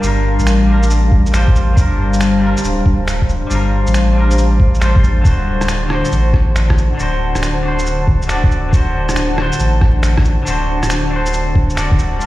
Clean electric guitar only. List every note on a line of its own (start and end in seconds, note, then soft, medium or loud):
0.00 0.63 G3 medium
0.00 0.66 D4 medium
0.04 0.67 F4 medium
0.04 0.69 A#4 medium
0.64 1.30 G3 medium
0.64 1.31 D4 medium
0.70 1.33 F4 medium
0.70 1.34 A#4 medium
1.32 1.72 G3 medium
1.32 1.75 D4 medium
1.32 1.76 F4 medium
1.36 1.76 C5 medium
1.73 2.37 G3 medium
1.73 2.40 D4 medium
1.79 2.41 F4 medium
1.79 2.43 A#4 medium
2.39 3.46 G3 medium
2.39 3.49 D4 medium
2.44 3.50 F4 medium
2.44 3.51 A#4 medium
3.47 4.11 G3 medium
3.47 4.14 D4 medium
3.52 4.15 F4 medium
3.52 4.16 A#4 medium
4.12 4.78 G3 medium
4.12 4.79 D4 medium
4.18 4.81 F4 medium
4.18 4.82 A#4 medium
4.80 5.21 G3 medium
4.80 5.23 D4 medium
4.80 5.24 F4 medium
4.80 5.24 C5 medium
5.21 5.85 D3 medium
5.21 5.88 D4 medium
5.27 5.89 F#4 medium
5.27 5.91 C5 medium
5.87 6.93 D3 medium
5.87 6.96 D4 medium
5.92 6.98 F#4 medium
5.92 6.99 C5 medium
6.95 7.59 D3 medium
6.95 7.62 D4 medium
7.00 7.63 F#4 medium
7.00 7.64 C5 loud
7.60 8.26 D3 medium
7.60 8.27 D4 medium
7.65 8.28 F#4 medium
7.65 8.30 C5 medium
8.27 8.67 D3 medium
8.27 8.70 D4 medium
8.27 8.71 F#4 medium
8.27 8.72 D5 loud
8.69 9.33 D3 medium
8.69 9.35 D4 medium
8.74 9.37 F#4 medium
8.74 9.38 C5 loud
9.34 10.41 D3 medium
9.34 10.44 D4 medium
9.39 10.46 F#4 medium
9.39 10.47 C5 medium
10.42 11.07 D3 medium
10.42 11.09 D4 medium
10.48 11.11 F#4 medium
10.48 11.12 C5 loud
11.08 11.73 D3 medium
11.08 11.75 D4 medium
11.13 11.76 F#4 medium
11.13 11.77 C5 medium
11.75 12.16 D3 medium
11.75 12.18 D4 medium
11.75 12.19 F#4 medium
11.79 12.20 D5 loud
12.16 12.26 G3 medium
12.16 12.26 D4 medium
12.22 12.26 F4 medium